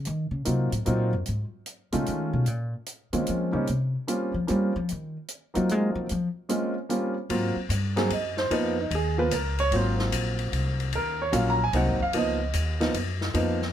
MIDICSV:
0, 0, Header, 1, 5, 480
1, 0, Start_track
1, 0, Tempo, 402955
1, 61, Time_signature, 3, 2, 24, 8
1, 16349, End_track
2, 0, Start_track
2, 0, Title_t, "Grand piano"
2, 0, Program_c, 0, 0
2, 537, Note_on_c, 0, 58, 44
2, 538, Note_on_c, 0, 54, 49
2, 539, Note_on_c, 0, 63, 41
2, 543, Note_on_c, 0, 60, 42
2, 544, Note_on_c, 0, 65, 50
2, 824, Note_off_c, 0, 54, 0
2, 824, Note_off_c, 0, 58, 0
2, 824, Note_off_c, 0, 63, 0
2, 826, Note_off_c, 0, 60, 0
2, 827, Note_off_c, 0, 65, 0
2, 1018, Note_on_c, 0, 54, 56
2, 1023, Note_on_c, 0, 58, 49
2, 1029, Note_on_c, 0, 60, 51
2, 1030, Note_on_c, 0, 65, 64
2, 1031, Note_on_c, 0, 63, 52
2, 1303, Note_off_c, 0, 54, 0
2, 1306, Note_off_c, 0, 58, 0
2, 1309, Note_off_c, 0, 60, 0
2, 1309, Note_off_c, 0, 65, 0
2, 1310, Note_off_c, 0, 63, 0
2, 2292, Note_on_c, 0, 56, 51
2, 2295, Note_on_c, 0, 61, 50
2, 2297, Note_on_c, 0, 57, 47
2, 2299, Note_on_c, 0, 63, 51
2, 2299, Note_on_c, 0, 65, 66
2, 2901, Note_off_c, 0, 56, 0
2, 2902, Note_off_c, 0, 61, 0
2, 2904, Note_off_c, 0, 57, 0
2, 2904, Note_off_c, 0, 63, 0
2, 2904, Note_off_c, 0, 65, 0
2, 3725, Note_on_c, 0, 58, 45
2, 3726, Note_on_c, 0, 56, 49
2, 3728, Note_on_c, 0, 60, 45
2, 3728, Note_on_c, 0, 61, 45
2, 3733, Note_on_c, 0, 65, 52
2, 4175, Note_off_c, 0, 58, 0
2, 4176, Note_off_c, 0, 56, 0
2, 4177, Note_off_c, 0, 60, 0
2, 4177, Note_off_c, 0, 61, 0
2, 4179, Note_off_c, 0, 65, 0
2, 4196, Note_on_c, 0, 55, 57
2, 4199, Note_on_c, 0, 58, 48
2, 4204, Note_on_c, 0, 61, 54
2, 4208, Note_on_c, 0, 60, 50
2, 4208, Note_on_c, 0, 63, 59
2, 4349, Note_off_c, 0, 55, 0
2, 4350, Note_off_c, 0, 58, 0
2, 4353, Note_off_c, 0, 61, 0
2, 4354, Note_off_c, 0, 63, 0
2, 4355, Note_off_c, 0, 60, 0
2, 4853, Note_on_c, 0, 55, 46
2, 4855, Note_on_c, 0, 58, 46
2, 4858, Note_on_c, 0, 60, 45
2, 4858, Note_on_c, 0, 61, 46
2, 4865, Note_on_c, 0, 65, 56
2, 5138, Note_off_c, 0, 55, 0
2, 5139, Note_off_c, 0, 58, 0
2, 5140, Note_off_c, 0, 60, 0
2, 5140, Note_off_c, 0, 61, 0
2, 5143, Note_off_c, 0, 65, 0
2, 5328, Note_on_c, 0, 58, 50
2, 5329, Note_on_c, 0, 55, 52
2, 5336, Note_on_c, 0, 61, 46
2, 5337, Note_on_c, 0, 60, 48
2, 5338, Note_on_c, 0, 65, 60
2, 5615, Note_off_c, 0, 55, 0
2, 5615, Note_off_c, 0, 58, 0
2, 5619, Note_off_c, 0, 60, 0
2, 5619, Note_off_c, 0, 61, 0
2, 5620, Note_off_c, 0, 65, 0
2, 6598, Note_on_c, 0, 54, 55
2, 6604, Note_on_c, 0, 63, 50
2, 6606, Note_on_c, 0, 60, 50
2, 6607, Note_on_c, 0, 58, 54
2, 6611, Note_on_c, 0, 65, 62
2, 7212, Note_off_c, 0, 54, 0
2, 7215, Note_off_c, 0, 63, 0
2, 7216, Note_off_c, 0, 60, 0
2, 7217, Note_off_c, 0, 58, 0
2, 7219, Note_off_c, 0, 65, 0
2, 7729, Note_on_c, 0, 58, 50
2, 7732, Note_on_c, 0, 56, 57
2, 7735, Note_on_c, 0, 60, 48
2, 7738, Note_on_c, 0, 61, 48
2, 7740, Note_on_c, 0, 65, 62
2, 8015, Note_off_c, 0, 58, 0
2, 8017, Note_off_c, 0, 56, 0
2, 8019, Note_off_c, 0, 60, 0
2, 8020, Note_off_c, 0, 61, 0
2, 8021, Note_off_c, 0, 65, 0
2, 8211, Note_on_c, 0, 55, 54
2, 8212, Note_on_c, 0, 58, 50
2, 8216, Note_on_c, 0, 60, 47
2, 8219, Note_on_c, 0, 61, 47
2, 8219, Note_on_c, 0, 65, 63
2, 8497, Note_off_c, 0, 55, 0
2, 8497, Note_off_c, 0, 58, 0
2, 8499, Note_off_c, 0, 60, 0
2, 8501, Note_off_c, 0, 61, 0
2, 8501, Note_off_c, 0, 65, 0
2, 8693, Note_on_c, 0, 54, 60
2, 8694, Note_on_c, 0, 58, 56
2, 8699, Note_on_c, 0, 65, 68
2, 8701, Note_on_c, 0, 60, 57
2, 8978, Note_off_c, 0, 54, 0
2, 8978, Note_off_c, 0, 58, 0
2, 8981, Note_off_c, 0, 65, 0
2, 8982, Note_off_c, 0, 60, 0
2, 9485, Note_on_c, 0, 60, 60
2, 9486, Note_on_c, 0, 54, 69
2, 9487, Note_on_c, 0, 58, 57
2, 9495, Note_on_c, 0, 68, 76
2, 9633, Note_off_c, 0, 54, 0
2, 9633, Note_off_c, 0, 60, 0
2, 9634, Note_off_c, 0, 58, 0
2, 9638, Note_off_c, 0, 68, 0
2, 9685, Note_on_c, 0, 75, 67
2, 9977, Note_off_c, 0, 75, 0
2, 9987, Note_on_c, 0, 72, 81
2, 10136, Note_off_c, 0, 72, 0
2, 10136, Note_on_c, 0, 53, 73
2, 10144, Note_on_c, 0, 58, 61
2, 10144, Note_on_c, 0, 59, 64
2, 10149, Note_on_c, 0, 63, 76
2, 10164, Note_on_c, 0, 71, 70
2, 10420, Note_off_c, 0, 53, 0
2, 10424, Note_off_c, 0, 58, 0
2, 10425, Note_off_c, 0, 59, 0
2, 10427, Note_off_c, 0, 63, 0
2, 10457, Note_off_c, 0, 71, 0
2, 10491, Note_on_c, 0, 63, 61
2, 10629, Note_off_c, 0, 63, 0
2, 10661, Note_on_c, 0, 68, 68
2, 10935, Note_on_c, 0, 53, 61
2, 10935, Note_on_c, 0, 59, 54
2, 10936, Note_on_c, 0, 58, 59
2, 10938, Note_on_c, 0, 65, 67
2, 10946, Note_off_c, 0, 68, 0
2, 10948, Note_on_c, 0, 71, 91
2, 11079, Note_off_c, 0, 53, 0
2, 11079, Note_off_c, 0, 59, 0
2, 11080, Note_off_c, 0, 58, 0
2, 11081, Note_off_c, 0, 65, 0
2, 11098, Note_off_c, 0, 71, 0
2, 11131, Note_on_c, 0, 70, 65
2, 11422, Note_off_c, 0, 70, 0
2, 11434, Note_on_c, 0, 73, 104
2, 11581, Note_off_c, 0, 73, 0
2, 11586, Note_on_c, 0, 54, 56
2, 11587, Note_on_c, 0, 58, 48
2, 11590, Note_on_c, 0, 65, 59
2, 11591, Note_on_c, 0, 60, 53
2, 11625, Note_on_c, 0, 72, 81
2, 11801, Note_off_c, 0, 72, 0
2, 12925, Note_off_c, 0, 54, 0
2, 12925, Note_off_c, 0, 58, 0
2, 12927, Note_off_c, 0, 65, 0
2, 12928, Note_off_c, 0, 60, 0
2, 13049, Note_on_c, 0, 70, 72
2, 13342, Note_off_c, 0, 70, 0
2, 13362, Note_on_c, 0, 73, 79
2, 13486, Note_on_c, 0, 54, 69
2, 13489, Note_on_c, 0, 61, 60
2, 13492, Note_on_c, 0, 58, 58
2, 13497, Note_on_c, 0, 65, 76
2, 13507, Note_off_c, 0, 73, 0
2, 13531, Note_on_c, 0, 77, 66
2, 13671, Note_off_c, 0, 77, 0
2, 13695, Note_on_c, 0, 82, 89
2, 13778, Note_off_c, 0, 54, 0
2, 13780, Note_off_c, 0, 61, 0
2, 13781, Note_off_c, 0, 58, 0
2, 13784, Note_off_c, 0, 65, 0
2, 13833, Note_off_c, 0, 82, 0
2, 13862, Note_on_c, 0, 80, 85
2, 13983, Note_on_c, 0, 54, 63
2, 13985, Note_on_c, 0, 58, 58
2, 13985, Note_on_c, 0, 60, 63
2, 13993, Note_on_c, 0, 63, 72
2, 13996, Note_off_c, 0, 80, 0
2, 14011, Note_on_c, 0, 78, 71
2, 14267, Note_off_c, 0, 54, 0
2, 14268, Note_off_c, 0, 58, 0
2, 14268, Note_off_c, 0, 60, 0
2, 14272, Note_off_c, 0, 63, 0
2, 14304, Note_off_c, 0, 78, 0
2, 14325, Note_on_c, 0, 77, 85
2, 14461, Note_on_c, 0, 58, 58
2, 14463, Note_on_c, 0, 53, 63
2, 14464, Note_on_c, 0, 59, 52
2, 14469, Note_off_c, 0, 77, 0
2, 14471, Note_on_c, 0, 63, 60
2, 14504, Note_on_c, 0, 75, 76
2, 14747, Note_off_c, 0, 58, 0
2, 14748, Note_off_c, 0, 53, 0
2, 14748, Note_off_c, 0, 59, 0
2, 14751, Note_off_c, 0, 63, 0
2, 15251, Note_on_c, 0, 53, 64
2, 15252, Note_on_c, 0, 58, 58
2, 15258, Note_on_c, 0, 59, 60
2, 15259, Note_on_c, 0, 63, 76
2, 15395, Note_off_c, 0, 75, 0
2, 15401, Note_off_c, 0, 53, 0
2, 15402, Note_off_c, 0, 58, 0
2, 15404, Note_off_c, 0, 59, 0
2, 15405, Note_off_c, 0, 63, 0
2, 15891, Note_on_c, 0, 53, 62
2, 15894, Note_on_c, 0, 58, 62
2, 15899, Note_on_c, 0, 59, 57
2, 15901, Note_on_c, 0, 63, 71
2, 16183, Note_off_c, 0, 53, 0
2, 16184, Note_off_c, 0, 58, 0
2, 16187, Note_off_c, 0, 59, 0
2, 16188, Note_off_c, 0, 63, 0
2, 16349, End_track
3, 0, Start_track
3, 0, Title_t, "Upright bass"
3, 0, Program_c, 1, 32
3, 82, Note_on_c, 1, 51, 99
3, 362, Note_off_c, 1, 51, 0
3, 369, Note_on_c, 1, 49, 81
3, 530, Note_off_c, 1, 49, 0
3, 561, Note_on_c, 1, 48, 77
3, 853, Note_off_c, 1, 48, 0
3, 860, Note_on_c, 1, 45, 70
3, 1015, Note_off_c, 1, 45, 0
3, 1040, Note_on_c, 1, 46, 94
3, 1337, Note_off_c, 1, 46, 0
3, 1344, Note_on_c, 1, 42, 81
3, 1497, Note_off_c, 1, 42, 0
3, 1528, Note_on_c, 1, 44, 78
3, 1709, Note_off_c, 1, 44, 0
3, 2307, Note_on_c, 1, 49, 86
3, 2457, Note_off_c, 1, 49, 0
3, 2480, Note_on_c, 1, 51, 90
3, 2773, Note_off_c, 1, 51, 0
3, 2780, Note_on_c, 1, 47, 80
3, 2945, Note_off_c, 1, 47, 0
3, 2945, Note_on_c, 1, 46, 74
3, 3247, Note_off_c, 1, 46, 0
3, 3732, Note_on_c, 1, 51, 84
3, 3888, Note_off_c, 1, 51, 0
3, 3921, Note_on_c, 1, 53, 82
3, 4199, Note_off_c, 1, 53, 0
3, 4206, Note_on_c, 1, 49, 80
3, 4365, Note_off_c, 1, 49, 0
3, 4398, Note_on_c, 1, 48, 76
3, 4693, Note_off_c, 1, 48, 0
3, 5173, Note_on_c, 1, 53, 82
3, 5328, Note_off_c, 1, 53, 0
3, 5361, Note_on_c, 1, 55, 92
3, 5654, Note_off_c, 1, 55, 0
3, 5668, Note_on_c, 1, 53, 92
3, 5816, Note_off_c, 1, 53, 0
3, 5854, Note_on_c, 1, 51, 73
3, 6141, Note_off_c, 1, 51, 0
3, 6630, Note_on_c, 1, 54, 88
3, 6807, Note_off_c, 1, 54, 0
3, 6807, Note_on_c, 1, 56, 95
3, 7085, Note_off_c, 1, 56, 0
3, 7092, Note_on_c, 1, 53, 91
3, 7247, Note_off_c, 1, 53, 0
3, 7281, Note_on_c, 1, 53, 94
3, 7462, Note_off_c, 1, 53, 0
3, 8689, Note_on_c, 1, 44, 82
3, 8985, Note_off_c, 1, 44, 0
3, 9162, Note_on_c, 1, 43, 92
3, 9633, Note_off_c, 1, 43, 0
3, 9651, Note_on_c, 1, 42, 85
3, 10117, Note_off_c, 1, 42, 0
3, 10130, Note_on_c, 1, 41, 80
3, 10597, Note_off_c, 1, 41, 0
3, 10609, Note_on_c, 1, 39, 94
3, 11077, Note_off_c, 1, 39, 0
3, 11088, Note_on_c, 1, 37, 92
3, 11557, Note_off_c, 1, 37, 0
3, 11570, Note_on_c, 1, 32, 86
3, 12039, Note_off_c, 1, 32, 0
3, 12056, Note_on_c, 1, 34, 84
3, 12522, Note_off_c, 1, 34, 0
3, 12532, Note_on_c, 1, 36, 89
3, 13000, Note_off_c, 1, 36, 0
3, 13019, Note_on_c, 1, 39, 81
3, 13484, Note_off_c, 1, 39, 0
3, 13491, Note_on_c, 1, 34, 91
3, 13961, Note_off_c, 1, 34, 0
3, 13970, Note_on_c, 1, 36, 91
3, 14132, Note_on_c, 1, 32, 57
3, 14150, Note_off_c, 1, 36, 0
3, 14284, Note_off_c, 1, 32, 0
3, 14291, Note_on_c, 1, 30, 65
3, 14444, Note_off_c, 1, 30, 0
3, 14449, Note_on_c, 1, 37, 79
3, 14920, Note_off_c, 1, 37, 0
3, 14937, Note_on_c, 1, 39, 85
3, 15405, Note_off_c, 1, 39, 0
3, 15417, Note_on_c, 1, 42, 87
3, 15885, Note_off_c, 1, 42, 0
3, 15893, Note_on_c, 1, 41, 91
3, 16349, Note_off_c, 1, 41, 0
3, 16349, End_track
4, 0, Start_track
4, 0, Title_t, "Muted upright bass strokes"
4, 9006, Note_on_c, 9, 29, 39
4, 9125, Note_off_c, 9, 29, 0
4, 16349, End_track
5, 0, Start_track
5, 0, Title_t, "Drums"
5, 60, Note_on_c, 9, 42, 39
5, 179, Note_off_c, 9, 42, 0
5, 539, Note_on_c, 9, 42, 48
5, 658, Note_off_c, 9, 42, 0
5, 860, Note_on_c, 9, 42, 41
5, 979, Note_off_c, 9, 42, 0
5, 1022, Note_on_c, 9, 42, 39
5, 1141, Note_off_c, 9, 42, 0
5, 1496, Note_on_c, 9, 42, 39
5, 1615, Note_off_c, 9, 42, 0
5, 1975, Note_on_c, 9, 42, 47
5, 2095, Note_off_c, 9, 42, 0
5, 2292, Note_on_c, 9, 42, 42
5, 2411, Note_off_c, 9, 42, 0
5, 2458, Note_on_c, 9, 42, 39
5, 2577, Note_off_c, 9, 42, 0
5, 2929, Note_on_c, 9, 42, 38
5, 3048, Note_off_c, 9, 42, 0
5, 3411, Note_on_c, 9, 42, 48
5, 3530, Note_off_c, 9, 42, 0
5, 3726, Note_on_c, 9, 42, 43
5, 3845, Note_off_c, 9, 42, 0
5, 3889, Note_on_c, 9, 42, 42
5, 4008, Note_off_c, 9, 42, 0
5, 4375, Note_on_c, 9, 42, 38
5, 4494, Note_off_c, 9, 42, 0
5, 4861, Note_on_c, 9, 42, 48
5, 4980, Note_off_c, 9, 42, 0
5, 5337, Note_on_c, 9, 42, 38
5, 5456, Note_off_c, 9, 42, 0
5, 5820, Note_on_c, 9, 42, 39
5, 5940, Note_off_c, 9, 42, 0
5, 6294, Note_on_c, 9, 42, 50
5, 6413, Note_off_c, 9, 42, 0
5, 6613, Note_on_c, 9, 42, 43
5, 6732, Note_off_c, 9, 42, 0
5, 6781, Note_on_c, 9, 42, 39
5, 6900, Note_off_c, 9, 42, 0
5, 7256, Note_on_c, 9, 42, 40
5, 7375, Note_off_c, 9, 42, 0
5, 7735, Note_on_c, 9, 42, 46
5, 7854, Note_off_c, 9, 42, 0
5, 8217, Note_on_c, 9, 42, 40
5, 8336, Note_off_c, 9, 42, 0
5, 8694, Note_on_c, 9, 51, 62
5, 8813, Note_off_c, 9, 51, 0
5, 9172, Note_on_c, 9, 44, 53
5, 9172, Note_on_c, 9, 51, 61
5, 9291, Note_off_c, 9, 44, 0
5, 9291, Note_off_c, 9, 51, 0
5, 9491, Note_on_c, 9, 51, 46
5, 9495, Note_on_c, 9, 38, 51
5, 9610, Note_off_c, 9, 51, 0
5, 9614, Note_off_c, 9, 38, 0
5, 9653, Note_on_c, 9, 51, 61
5, 9772, Note_off_c, 9, 51, 0
5, 9970, Note_on_c, 9, 38, 49
5, 10089, Note_off_c, 9, 38, 0
5, 10137, Note_on_c, 9, 51, 61
5, 10256, Note_off_c, 9, 51, 0
5, 10616, Note_on_c, 9, 51, 57
5, 10735, Note_off_c, 9, 51, 0
5, 11093, Note_on_c, 9, 44, 54
5, 11093, Note_on_c, 9, 51, 70
5, 11213, Note_off_c, 9, 44, 0
5, 11213, Note_off_c, 9, 51, 0
5, 11418, Note_on_c, 9, 51, 49
5, 11537, Note_off_c, 9, 51, 0
5, 11576, Note_on_c, 9, 51, 62
5, 11695, Note_off_c, 9, 51, 0
5, 11900, Note_on_c, 9, 38, 51
5, 12019, Note_off_c, 9, 38, 0
5, 12058, Note_on_c, 9, 44, 49
5, 12058, Note_on_c, 9, 51, 74
5, 12177, Note_off_c, 9, 44, 0
5, 12177, Note_off_c, 9, 51, 0
5, 12373, Note_on_c, 9, 51, 47
5, 12492, Note_off_c, 9, 51, 0
5, 12543, Note_on_c, 9, 51, 59
5, 12662, Note_off_c, 9, 51, 0
5, 12863, Note_on_c, 9, 51, 45
5, 12982, Note_off_c, 9, 51, 0
5, 13015, Note_on_c, 9, 51, 61
5, 13134, Note_off_c, 9, 51, 0
5, 13495, Note_on_c, 9, 44, 59
5, 13495, Note_on_c, 9, 51, 64
5, 13614, Note_off_c, 9, 44, 0
5, 13614, Note_off_c, 9, 51, 0
5, 13975, Note_on_c, 9, 51, 56
5, 14094, Note_off_c, 9, 51, 0
5, 14296, Note_on_c, 9, 36, 47
5, 14415, Note_off_c, 9, 36, 0
5, 14451, Note_on_c, 9, 51, 61
5, 14570, Note_off_c, 9, 51, 0
5, 14932, Note_on_c, 9, 44, 67
5, 14932, Note_on_c, 9, 51, 64
5, 15051, Note_off_c, 9, 44, 0
5, 15051, Note_off_c, 9, 51, 0
5, 15259, Note_on_c, 9, 51, 45
5, 15262, Note_on_c, 9, 38, 55
5, 15378, Note_off_c, 9, 51, 0
5, 15382, Note_off_c, 9, 38, 0
5, 15418, Note_on_c, 9, 51, 67
5, 15538, Note_off_c, 9, 51, 0
5, 15738, Note_on_c, 9, 38, 56
5, 15857, Note_off_c, 9, 38, 0
5, 15896, Note_on_c, 9, 51, 62
5, 16015, Note_off_c, 9, 51, 0
5, 16224, Note_on_c, 9, 38, 40
5, 16343, Note_off_c, 9, 38, 0
5, 16349, End_track
0, 0, End_of_file